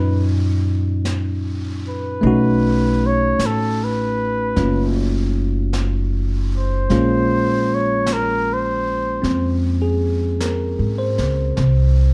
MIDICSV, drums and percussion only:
0, 0, Header, 1, 2, 480
1, 0, Start_track
1, 0, Key_signature, -5, "minor"
1, 0, Tempo, 1167315
1, 916, Time_signature, 4, 2, 24, 8
1, 4991, End_track
2, 0, Start_track
2, 0, Title_t, "Drums"
2, 432, Note_on_c, 9, 25, 31
2, 432, Note_on_c, 9, 38, 40
2, 432, Note_on_c, 9, 44, 41
2, 473, Note_off_c, 9, 38, 0
2, 473, Note_off_c, 9, 44, 0
2, 917, Note_off_c, 9, 25, 0
2, 917, Note_on_c, 9, 25, 34
2, 1395, Note_off_c, 9, 25, 0
2, 1395, Note_on_c, 9, 25, 33
2, 1395, Note_on_c, 9, 38, 40
2, 1395, Note_on_c, 9, 44, 59
2, 1437, Note_off_c, 9, 38, 0
2, 1437, Note_off_c, 9, 44, 0
2, 1876, Note_off_c, 9, 25, 0
2, 1876, Note_on_c, 9, 25, 31
2, 1876, Note_on_c, 9, 38, 28
2, 1917, Note_off_c, 9, 38, 0
2, 2356, Note_off_c, 9, 25, 0
2, 2356, Note_on_c, 9, 25, 29
2, 2356, Note_on_c, 9, 38, 39
2, 2356, Note_on_c, 9, 44, 39
2, 2398, Note_off_c, 9, 38, 0
2, 2398, Note_off_c, 9, 44, 0
2, 2835, Note_off_c, 9, 25, 0
2, 2835, Note_on_c, 9, 25, 34
2, 2835, Note_on_c, 9, 38, 25
2, 2877, Note_off_c, 9, 38, 0
2, 3316, Note_off_c, 9, 25, 0
2, 3316, Note_on_c, 9, 25, 29
2, 3316, Note_on_c, 9, 38, 45
2, 3316, Note_on_c, 9, 44, 56
2, 3357, Note_off_c, 9, 38, 0
2, 3357, Note_off_c, 9, 44, 0
2, 3800, Note_off_c, 9, 25, 0
2, 3800, Note_on_c, 9, 25, 30
2, 3800, Note_on_c, 9, 38, 30
2, 3841, Note_off_c, 9, 38, 0
2, 4278, Note_off_c, 9, 25, 0
2, 4278, Note_on_c, 9, 25, 30
2, 4278, Note_on_c, 9, 38, 39
2, 4278, Note_on_c, 9, 44, 52
2, 4319, Note_off_c, 9, 38, 0
2, 4319, Note_off_c, 9, 44, 0
2, 4597, Note_on_c, 9, 38, 28
2, 4638, Note_off_c, 9, 38, 0
2, 4757, Note_off_c, 9, 25, 0
2, 4757, Note_on_c, 9, 25, 40
2, 4757, Note_on_c, 9, 38, 28
2, 4798, Note_off_c, 9, 38, 0
2, 4991, Note_off_c, 9, 25, 0
2, 4991, End_track
0, 0, End_of_file